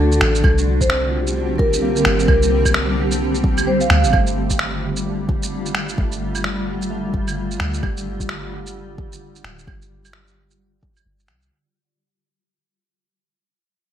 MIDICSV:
0, 0, Header, 1, 7, 480
1, 0, Start_track
1, 0, Key_signature, -2, "minor"
1, 0, Tempo, 461538
1, 459, Time_signature, 4, 2, 24, 8
1, 14481, End_track
2, 0, Start_track
2, 0, Title_t, "Vibraphone"
2, 0, Program_c, 0, 11
2, 0, Note_on_c, 0, 69, 93
2, 515, Note_off_c, 0, 69, 0
2, 844, Note_on_c, 0, 72, 95
2, 1094, Note_off_c, 0, 72, 0
2, 1646, Note_on_c, 0, 70, 93
2, 1907, Note_off_c, 0, 70, 0
2, 2031, Note_on_c, 0, 70, 89
2, 2353, Note_off_c, 0, 70, 0
2, 2368, Note_on_c, 0, 70, 91
2, 2467, Note_off_c, 0, 70, 0
2, 2519, Note_on_c, 0, 70, 76
2, 2582, Note_off_c, 0, 70, 0
2, 3818, Note_on_c, 0, 72, 93
2, 3936, Note_off_c, 0, 72, 0
2, 3961, Note_on_c, 0, 77, 92
2, 4297, Note_off_c, 0, 77, 0
2, 14481, End_track
3, 0, Start_track
3, 0, Title_t, "Synth texture"
3, 0, Program_c, 1, 99
3, 4306, Note_on_c, 1, 55, 87
3, 4307, Note_on_c, 1, 67, 86
3, 11994, Note_off_c, 1, 55, 0
3, 11995, Note_off_c, 1, 67, 0
3, 14481, End_track
4, 0, Start_track
4, 0, Title_t, "Tine electric piano"
4, 0, Program_c, 2, 4
4, 0, Control_c, 2, 64, 127
4, 0, Note_on_c, 2, 62, 70
4, 0, Note_on_c, 2, 66, 75
4, 470, Control_c, 2, 64, 0
4, 654, Note_off_c, 2, 66, 0
4, 657, Note_off_c, 2, 62, 0
4, 679, Control_c, 2, 64, 127
4, 939, Note_on_c, 2, 60, 77
4, 1130, Note_on_c, 2, 65, 55
4, 1277, Note_on_c, 2, 67, 57
4, 1895, Note_on_c, 2, 58, 78
4, 2793, Note_off_c, 2, 60, 0
4, 2948, Note_off_c, 2, 65, 0
4, 3082, Note_off_c, 2, 67, 0
4, 3751, Note_off_c, 2, 58, 0
4, 3817, Note_on_c, 2, 60, 86
4, 4301, Note_on_c, 2, 57, 77
4, 4314, Control_c, 2, 64, 0
4, 4494, Control_c, 2, 64, 127
4, 4496, Note_off_c, 2, 60, 0
4, 5261, Note_on_c, 2, 55, 63
4, 6154, Note_off_c, 2, 57, 0
4, 6220, Note_on_c, 2, 57, 75
4, 6682, Note_off_c, 2, 55, 0
4, 6694, Note_on_c, 2, 55, 63
4, 7164, Note_off_c, 2, 57, 0
4, 7177, Note_on_c, 2, 57, 73
4, 8151, Control_c, 2, 64, 0
4, 8550, Note_off_c, 2, 55, 0
4, 9032, Note_off_c, 2, 57, 0
4, 14481, End_track
5, 0, Start_track
5, 0, Title_t, "Ambient pad"
5, 0, Program_c, 3, 92
5, 0, Note_on_c, 3, 50, 84
5, 0, Note_on_c, 3, 57, 77
5, 0, Note_on_c, 3, 62, 77
5, 0, Note_on_c, 3, 66, 96
5, 416, Note_off_c, 3, 50, 0
5, 423, Note_off_c, 3, 66, 0
5, 425, Note_off_c, 3, 57, 0
5, 440, Note_off_c, 3, 62, 0
5, 458, Note_on_c, 3, 60, 79
5, 462, Note_on_c, 3, 50, 87
5, 463, Note_on_c, 3, 55, 79
5, 464, Note_on_c, 3, 67, 93
5, 4260, Note_off_c, 3, 60, 0
5, 4262, Note_off_c, 3, 50, 0
5, 4263, Note_off_c, 3, 55, 0
5, 4263, Note_off_c, 3, 67, 0
5, 4296, Note_on_c, 3, 55, 78
5, 4300, Note_on_c, 3, 65, 91
5, 4302, Note_on_c, 3, 50, 83
5, 11936, Note_off_c, 3, 55, 0
5, 11938, Note_off_c, 3, 65, 0
5, 11939, Note_off_c, 3, 50, 0
5, 14481, End_track
6, 0, Start_track
6, 0, Title_t, "808-style bass"
6, 0, Program_c, 4, 38
6, 0, Note_on_c, 4, 38, 102
6, 205, Note_off_c, 4, 38, 0
6, 222, Note_on_c, 4, 33, 81
6, 446, Note_off_c, 4, 33, 0
6, 457, Note_on_c, 4, 36, 98
6, 2126, Note_off_c, 4, 36, 0
6, 2138, Note_on_c, 4, 31, 85
6, 2364, Note_off_c, 4, 31, 0
6, 2373, Note_on_c, 4, 36, 102
6, 4053, Note_off_c, 4, 36, 0
6, 4059, Note_on_c, 4, 38, 91
6, 4205, Note_on_c, 4, 31, 79
6, 4221, Note_off_c, 4, 38, 0
6, 4292, Note_off_c, 4, 31, 0
6, 4299, Note_on_c, 4, 31, 99
6, 6207, Note_off_c, 4, 31, 0
6, 6221, Note_on_c, 4, 31, 98
6, 7408, Note_off_c, 4, 31, 0
6, 7420, Note_on_c, 4, 31, 94
6, 7888, Note_off_c, 4, 31, 0
6, 7907, Note_on_c, 4, 38, 81
6, 8128, Note_off_c, 4, 38, 0
6, 8145, Note_on_c, 4, 31, 98
6, 9810, Note_off_c, 4, 31, 0
6, 9818, Note_on_c, 4, 26, 82
6, 10044, Note_off_c, 4, 26, 0
6, 10059, Note_on_c, 4, 31, 96
6, 11491, Note_off_c, 4, 31, 0
6, 11498, Note_on_c, 4, 31, 77
6, 11738, Note_on_c, 4, 36, 93
6, 11753, Note_off_c, 4, 31, 0
6, 11963, Note_off_c, 4, 36, 0
6, 14481, End_track
7, 0, Start_track
7, 0, Title_t, "Drums"
7, 122, Note_on_c, 9, 82, 44
7, 218, Note_on_c, 9, 26, 101
7, 226, Note_off_c, 9, 82, 0
7, 322, Note_off_c, 9, 26, 0
7, 365, Note_on_c, 9, 82, 54
7, 456, Note_on_c, 9, 36, 114
7, 459, Note_on_c, 9, 75, 39
7, 469, Note_off_c, 9, 82, 0
7, 560, Note_off_c, 9, 36, 0
7, 563, Note_off_c, 9, 75, 0
7, 605, Note_on_c, 9, 82, 45
7, 709, Note_off_c, 9, 82, 0
7, 841, Note_on_c, 9, 36, 61
7, 843, Note_on_c, 9, 82, 55
7, 933, Note_on_c, 9, 26, 103
7, 945, Note_off_c, 9, 36, 0
7, 947, Note_off_c, 9, 82, 0
7, 1037, Note_off_c, 9, 26, 0
7, 1321, Note_on_c, 9, 82, 54
7, 1425, Note_off_c, 9, 82, 0
7, 1655, Note_on_c, 9, 36, 102
7, 1759, Note_off_c, 9, 36, 0
7, 1802, Note_on_c, 9, 82, 58
7, 1906, Note_off_c, 9, 82, 0
7, 2042, Note_on_c, 9, 82, 45
7, 2131, Note_on_c, 9, 26, 101
7, 2146, Note_off_c, 9, 82, 0
7, 2235, Note_off_c, 9, 26, 0
7, 2283, Note_on_c, 9, 82, 54
7, 2374, Note_on_c, 9, 36, 120
7, 2374, Note_on_c, 9, 75, 38
7, 2387, Note_off_c, 9, 82, 0
7, 2478, Note_off_c, 9, 36, 0
7, 2478, Note_off_c, 9, 75, 0
7, 2523, Note_on_c, 9, 82, 46
7, 2627, Note_off_c, 9, 82, 0
7, 2761, Note_on_c, 9, 36, 60
7, 2761, Note_on_c, 9, 75, 38
7, 2761, Note_on_c, 9, 82, 60
7, 2853, Note_on_c, 9, 26, 107
7, 2865, Note_off_c, 9, 36, 0
7, 2865, Note_off_c, 9, 75, 0
7, 2865, Note_off_c, 9, 82, 0
7, 2957, Note_off_c, 9, 26, 0
7, 3238, Note_on_c, 9, 82, 58
7, 3342, Note_off_c, 9, 82, 0
7, 3479, Note_on_c, 9, 82, 32
7, 3575, Note_on_c, 9, 36, 104
7, 3583, Note_off_c, 9, 82, 0
7, 3679, Note_off_c, 9, 36, 0
7, 3719, Note_on_c, 9, 75, 41
7, 3719, Note_on_c, 9, 82, 59
7, 3823, Note_off_c, 9, 75, 0
7, 3823, Note_off_c, 9, 82, 0
7, 3959, Note_on_c, 9, 82, 48
7, 4056, Note_on_c, 9, 26, 102
7, 4063, Note_off_c, 9, 82, 0
7, 4160, Note_off_c, 9, 26, 0
7, 4202, Note_on_c, 9, 82, 59
7, 4293, Note_on_c, 9, 75, 38
7, 4299, Note_on_c, 9, 36, 113
7, 4306, Note_off_c, 9, 82, 0
7, 4397, Note_off_c, 9, 75, 0
7, 4403, Note_off_c, 9, 36, 0
7, 4439, Note_on_c, 9, 82, 45
7, 4543, Note_off_c, 9, 82, 0
7, 4681, Note_on_c, 9, 82, 55
7, 4685, Note_on_c, 9, 36, 59
7, 4776, Note_on_c, 9, 26, 104
7, 4785, Note_off_c, 9, 82, 0
7, 4789, Note_off_c, 9, 36, 0
7, 4880, Note_off_c, 9, 26, 0
7, 5163, Note_on_c, 9, 82, 55
7, 5267, Note_off_c, 9, 82, 0
7, 5498, Note_on_c, 9, 36, 100
7, 5602, Note_off_c, 9, 36, 0
7, 5644, Note_on_c, 9, 82, 59
7, 5748, Note_off_c, 9, 82, 0
7, 5885, Note_on_c, 9, 82, 44
7, 5976, Note_on_c, 9, 26, 101
7, 5989, Note_off_c, 9, 82, 0
7, 6080, Note_off_c, 9, 26, 0
7, 6124, Note_on_c, 9, 82, 57
7, 6220, Note_on_c, 9, 36, 118
7, 6228, Note_off_c, 9, 82, 0
7, 6324, Note_off_c, 9, 36, 0
7, 6365, Note_on_c, 9, 82, 44
7, 6469, Note_off_c, 9, 82, 0
7, 6604, Note_on_c, 9, 75, 35
7, 6604, Note_on_c, 9, 82, 55
7, 6700, Note_on_c, 9, 26, 106
7, 6708, Note_off_c, 9, 75, 0
7, 6708, Note_off_c, 9, 82, 0
7, 6804, Note_off_c, 9, 26, 0
7, 7091, Note_on_c, 9, 82, 56
7, 7195, Note_off_c, 9, 82, 0
7, 7422, Note_on_c, 9, 36, 102
7, 7526, Note_off_c, 9, 36, 0
7, 7568, Note_on_c, 9, 75, 37
7, 7568, Note_on_c, 9, 82, 56
7, 7672, Note_off_c, 9, 75, 0
7, 7672, Note_off_c, 9, 82, 0
7, 7812, Note_on_c, 9, 82, 44
7, 7902, Note_on_c, 9, 26, 100
7, 7916, Note_off_c, 9, 82, 0
7, 8006, Note_off_c, 9, 26, 0
7, 8048, Note_on_c, 9, 82, 55
7, 8142, Note_on_c, 9, 75, 33
7, 8144, Note_on_c, 9, 36, 117
7, 8152, Note_off_c, 9, 82, 0
7, 8246, Note_off_c, 9, 75, 0
7, 8248, Note_off_c, 9, 36, 0
7, 8292, Note_on_c, 9, 82, 42
7, 8396, Note_off_c, 9, 82, 0
7, 8530, Note_on_c, 9, 36, 61
7, 8531, Note_on_c, 9, 82, 54
7, 8622, Note_on_c, 9, 26, 106
7, 8634, Note_off_c, 9, 36, 0
7, 8635, Note_off_c, 9, 82, 0
7, 8726, Note_off_c, 9, 26, 0
7, 9012, Note_on_c, 9, 82, 53
7, 9116, Note_off_c, 9, 82, 0
7, 9342, Note_on_c, 9, 36, 101
7, 9446, Note_off_c, 9, 36, 0
7, 9489, Note_on_c, 9, 82, 56
7, 9593, Note_off_c, 9, 82, 0
7, 9730, Note_on_c, 9, 82, 42
7, 9822, Note_on_c, 9, 26, 102
7, 9834, Note_off_c, 9, 82, 0
7, 9926, Note_off_c, 9, 26, 0
7, 9969, Note_on_c, 9, 82, 52
7, 10061, Note_on_c, 9, 36, 114
7, 10064, Note_on_c, 9, 75, 33
7, 10073, Note_off_c, 9, 82, 0
7, 10165, Note_off_c, 9, 36, 0
7, 10168, Note_off_c, 9, 75, 0
7, 10212, Note_on_c, 9, 82, 41
7, 10316, Note_off_c, 9, 82, 0
7, 10451, Note_on_c, 9, 75, 32
7, 10451, Note_on_c, 9, 82, 51
7, 10539, Note_on_c, 9, 26, 96
7, 10555, Note_off_c, 9, 75, 0
7, 10555, Note_off_c, 9, 82, 0
7, 10643, Note_off_c, 9, 26, 0
7, 10686, Note_on_c, 9, 82, 28
7, 10790, Note_off_c, 9, 82, 0
7, 10925, Note_on_c, 9, 82, 50
7, 11029, Note_off_c, 9, 82, 0
7, 11260, Note_on_c, 9, 36, 98
7, 11364, Note_off_c, 9, 36, 0
7, 11404, Note_on_c, 9, 75, 32
7, 11404, Note_on_c, 9, 82, 50
7, 11508, Note_off_c, 9, 75, 0
7, 11508, Note_off_c, 9, 82, 0
7, 11643, Note_on_c, 9, 82, 41
7, 11735, Note_on_c, 9, 26, 97
7, 11747, Note_off_c, 9, 82, 0
7, 11839, Note_off_c, 9, 26, 0
7, 11878, Note_on_c, 9, 82, 49
7, 11982, Note_off_c, 9, 82, 0
7, 14481, End_track
0, 0, End_of_file